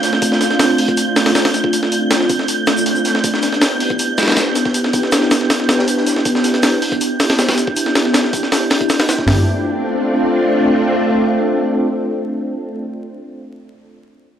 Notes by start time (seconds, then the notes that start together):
Already playing: G6
0.03 snare, open hi-hat, shaker
0.13 snare
0.22 kick, open hi-hat, shaker
0.32 snare
0.41 snare, open hi-hat, shaker
0.51 snare, closed hi-hat
0.59 snare, open hi-hat, shaker
0.78 open hi-hat
0.88 kick, closed hi-hat
0.97 open hi-hat, shaker
1.16 snare, open hi-hat, shaker
1.26 snare, open hi-hat
1.35 snare, open hi-hat, shaker
1.45 snare, open hi-hat
1.54 snare, open hi-hat, shaker
1.64 kick
1.73 open hi-hat, shaker
1.83 snare
1.92 open hi-hat, shaker
2.11 snare, open hi-hat, shaker
2.20 snare
2.29 kick, open hi-hat, shaker
2.39 snare
2.48 open hi-hat, shaker
2.67 snare, open hi-hat, shaker
2.77 shaker
2.86 snare, open hi-hat
2.95 shaker
3.05 snare, open hi-hat, shaker
3.15 snare
3.24 kick, open hi-hat, shaker
3.34 snare
3.42 snare, open hi-hat, shaker
3.52 snare, closed hi-hat
3.61 snare, open hi-hat, shaker
3.80 open hi-hat
3.90 kick, closed hi-hat
3.99 open hi-hat, shaker
4.18 snare, open hi-hat, shaker
4.23 snare, open hi-hat
4.28 snare, open hi-hat
4.32 snare, open hi-hat
4.37 snare, open hi-hat, shaker
4.55 snare, open hi-hat, shaker
4.65 kick, snare
4.74 open hi-hat, shaker
4.84 snare
4.93 kick, open hi-hat, shaker
5.03 snare
5.12 snare, open hi-hat, shaker
5.22 snare
5.31 snare, open hi-hat, shaker
5.41 snare
5.50 snare, open hi-hat, shaker
5.60 snare
5.69 snare, open hi-hat, shaker
5.79 snare
5.88 open hi-hat, shaker
5.97 snare
6.07 snare, open hi-hat, shaker
6.16 snare
6.25 kick, open hi-hat, shaker
6.35 snare
6.44 snare, open hi-hat, shaker
6.54 snare, closed hi-hat
6.63 snare, open hi-hat, shaker
6.82 open hi-hat
6.92 kick, closed hi-hat
7.01 open hi-hat, shaker
7.20 snare, open hi-hat, shaker
7.30 snare, open hi-hat
7.38 snare, open hi-hat, shaker
7.49 snare, open hi-hat
7.58 snare, open hi-hat, shaker
7.67 kick
7.76 open hi-hat, shaker
7.86 snare
7.95 snare, open hi-hat, shaker
8.05 snare
8.14 snare, open hi-hat, shaker
8.24 snare
8.33 kick, open hi-hat, shaker
8.43 snare
8.52 snare, open hi-hat, shaker
8.70 snare, open hi-hat
8.81 kick, closed hi-hat
8.89 snare, open hi-hat, shaker
9.00 snare, open hi-hat
9.09 snare, open hi-hat, shaker
9.18 kick, snare
9.27 A3 C4 D4 F4, snare, floor tom, open hi-hat